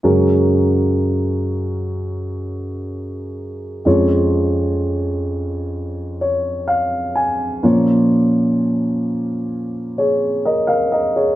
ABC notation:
X:1
M:4/4
L:1/16
Q:1/4=64
K:F#
V:1 name="Grand piano"
z16 | z8 z2 c2 e2 g2 | z8 z2 [Gc]2 [Ad] [Ae] [Ad] [Gc] |]
V:2 name="Grand piano"
[F,,C,G,CFA]16 | [E,,E,G,CEc]16 | [A,,E,A,CEc]16 |]